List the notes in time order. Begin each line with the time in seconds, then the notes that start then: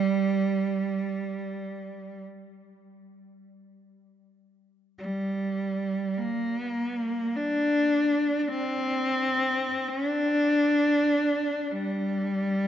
Already playing: G3
4.99 G3
6.18 A#3
6.60 B3
6.71 A#3
7.36 D4
8.39 D4
8.48 C4
9.89 C#4
10.07 D4
11.71 G3